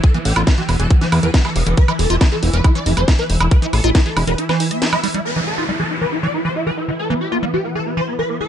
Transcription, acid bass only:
0.14 E3
0.36 F4
0.47 G3
0.58 E3
0.80 E3
1.01 E3
1.23 E3
1.45 E3
1.67 D3
1.88 E3
2.10 F4
2.21 G3
2.32 E3
2.54 E3
2.75 E3
2.97 E3
3.19 E3
3.41 D3
3.62 E3
3.84 F4
3.95 G3
4.06 E3
4.28 E3
4.49 E3
4.71 B3
4.82 F4
4.93 F3
5.04 G3
5.14 G3
5.36 E3
5.58 F4
5.69 G3
5.80 E3
6.01 E3
6.23 E3
6.45 E3
6.67 E3
6.88 D3
7.10 E3
7.32 F4
7.43 G3
7.54 E3
7.75 E3
7.97 E3
8.19 E3
8.41 E3

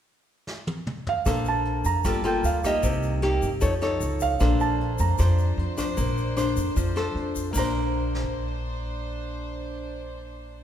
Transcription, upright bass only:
1.26 A#1
1.85 F2
2.05 G1
2.43 D2
2.84 C2
3.43 G2
3.62 F2
4.01 C#2
4.41 A#1
5.00 F2
5.19 F2
5.57 F2
5.98 A#1
6.57 F2
6.76 F2
7.15 F2
7.55 A#1

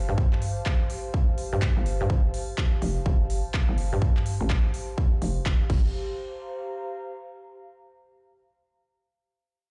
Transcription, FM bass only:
0.09 G2
1.53 G2
1.77 G1
2.01 G2
2.10 G1
2.82 F1
3.06 G1
3.69 G1
3.93 G2
4.41 A1
5.22 F1
5.70 G1

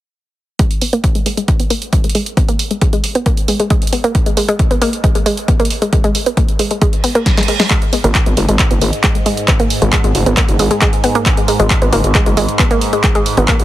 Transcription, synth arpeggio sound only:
0.59 G#3
0.82 B3
0.93 A#3
1.15 G#3
1.26 G#3
1.37 G#3
1.60 B3
1.70 A#3
1.93 G#3
2.04 G#3
2.15 G#3
2.37 B3
2.48 A#3
2.71 G#3
2.82 G#3
2.93 G#3
3.15 B3
3.26 A#3
3.48 G#3
3.60 G#3
3.70 G#3
3.93 B3
4.04 A#3
4.26 G#3
4.37 G#3
4.48 G#3
4.71 B3
4.82 A#3
5.04 G#3
5.15 G#3
5.26 G#3
5.48 B3
5.60 A#3
5.82 G#3
5.93 G#3
6.04 G#3
6.26 B3
6.37 A#3
6.59 G#3
6.71 G#3
6.82 G#3
7.04 B3
7.15 A#3
7.37 G#3
7.48 G#3
7.60 G#3
7.70 G#3
7.93 B3
8.04 A#3
8.26 G#3
8.37 G#3
8.49 G#3
8.71 B3
8.82 A#3
9.04 G#3
9.15 G#3
9.26 G#3
9.48 B3
9.60 A#3
9.82 G#3
9.93 G#3
10.04 G#3
10.26 B3
10.37 A#3
10.59 G#3
10.71 G#3
10.82 G#3
11.04 B3
11.15 A#3
11.37 G#3
11.48 G#3
11.60 G#3
11.82 B3
11.93 A#3
12.15 G#3
12.26 G#3
12.37 G#3
12.59 B3
12.71 A#3
12.93 G#3
13.04 G#3
13.15 G#3
13.37 B3
13.48 A#3

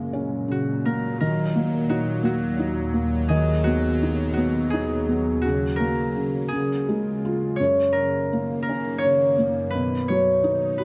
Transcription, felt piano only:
Already playing: F#2 C#3 A#3
0.13 C#4
0.48 C#3
0.86 A#3
1.21 D#3
1.56 A#3
1.90 D#4
2.23 A#3
2.59 D#4
2.94 A#3
3.30 D#3
3.67 B3
4.03 D#4
4.37 B3
4.73 D#4
5.08 B3
5.45 C#3
5.80 A#3
6.16 C#3
6.52 C#3
6.89 G#3
7.25 F4
7.60 F#2
7.97 C#3
8.33 A#3
8.69 C#4
9.04 C#3
9.38 A#3
9.75 B2
10.10 F#3
10.44 D#4
10.79 F#4

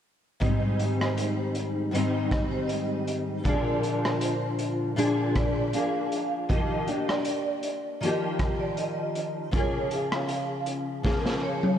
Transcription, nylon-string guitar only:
0.40 G#2 D#3 G3 C4
0.45 D#4
1.91 G#2 D#3 G3 C4
1.97 D#4
3.44 A#2 D3 F3 A#3
3.48 D4 G#4
4.96 A#2 D3 F3 A#3 D4 G#4
5.73 F3 A#3 D4 G#4
6.49 D#3 F3 A#3 G4
6.87 A#3 D4 G4
8.00 D#3 F3 A#3
8.05 G4
9.51 C#3 F3 A#3 F4
9.57 G#4
11.03 C#3 F3 A#3 F4 G#4

